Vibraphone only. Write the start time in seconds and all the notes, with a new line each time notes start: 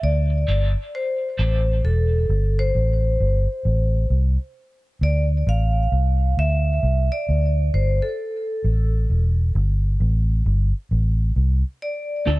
0.04 D5
0.95 C5
1.85 A4
2.59 C5
5.03 D5
5.49 F5
6.39 E5
7.12 D5
7.74 C5
8.02 A4
11.82 D5